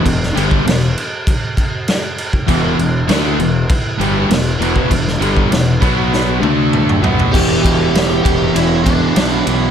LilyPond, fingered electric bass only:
\new Staff \with { instrumentName = "Fingered electric bass" } { \clef bass \time 4/4 \key e \minor \tempo 4 = 99 e,,8 g,,8 e,,8 r2 r8 | e,,8 e,,8 d,8 e,,8 r8 g,,8 e,,8 e,,8 | e,,8 g,,8 e,,8 b,,4 d,4 b,,8 | e,,8 e,,8 e,,8 e,,8 e,,4 b,,8 b,,8 | }